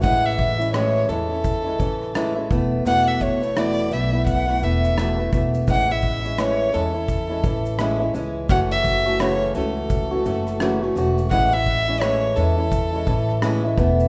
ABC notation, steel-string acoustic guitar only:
X:1
M:4/4
L:1/16
Q:"Swing 16ths" 1/4=85
K:A
V:1 name="Steel-string acoustic guitar"
[A,,E,G,CE]3 [G,CE] [A,,E,G,CE]2 [E,G,CE] [CE]2 [G,CE] [E,CE]2 [A,,E,G,CE] [G,CE] [E,A,B,E]2 | [E,,B,,E,A,B,E]3 [E,A,B,E] [E,,B,,E,A,B,E]2 [E,A,B,E] [E,A,B,E]2 [E,A,B,E] [E,A,B,E]2 [E,,B,,E,A,B,E] [E,A,B,E] [E,A,B,E]2 | [A,,E,G,CE] [G,CE]2 [G,CE] [A,,E,G,CE]2 [E,G,CE] [CE]2 [G,CE] [E,CE]2 [A,,E,G,CE] [G,CE] [E,G,CE]2 | [F,,C,E,A,CF]3 [E,A,CF] [F,,C,E,A,CF]2 [E,A,CF]3 [E,A,CF] [E,A,CF]2 [F,,C,E,A,CF] [E,A,CF] [E,A,CF]2 |
[A,,E,G,CE] [G,CE]2 [G,CE] [A,,E,G,CE]2 [E,G,CE] [CE]2 [G,CE] [E,CE]2 [A,,E,G,CE] [G,CE] [E,A,B,E]2 |]